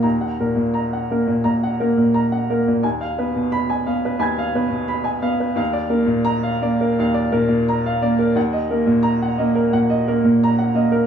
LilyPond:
<<
  \new Staff \with { instrumentName = "Upright piano" } { \time 4/4 \key ees \minor \tempo 4 = 87 << { r1 | r4 ces'''8 r8 <ces''' aes'''>2 | r4 bes''8 r2 r8 | r4 bes''8 r2 r8 | } \\ { <bes, bes''>16 ges''16 bes'16 bes,16 bes''16 ges''16 bes'16 bes,16 bes''16 ges''16 bes'16 bes,16 bes''16 ges''16 bes'16 bes,16 | aes''16 f''16 ces''16 ces8 aes''16 f''16 ces''16 aes''16 f''16 ces''16 ces16 ces'''16 aes''16 f''16 ces''16 | f''16 d''16 bes'16 bes,8 f''16 d''16 bes'16 f''16 d''16 bes'16 bes,16 bes''16 f''16 d''16 bes'16 | ges''16 ees''16 bes'16 bes,8 ges''16 ees''16 bes'16 ges''16 ees''16 bes'16 bes,16 bes''16 ges''16 ees''16 bes'16 | } >> }
  \new Staff \with { instrumentName = "Upright piano" } { \time 4/4 \key ees \minor <ees, bes>8 bes,4 bes8 bes,8 bes4 bes8 | ees,8 ces'4 ces'8 ees,8 ces4 ces'8 | ees,8 bes4 bes8 ees,8 bes,4 bes8 | ees,8 bes4 bes8 bes,8 bes4 bes8 | }
>>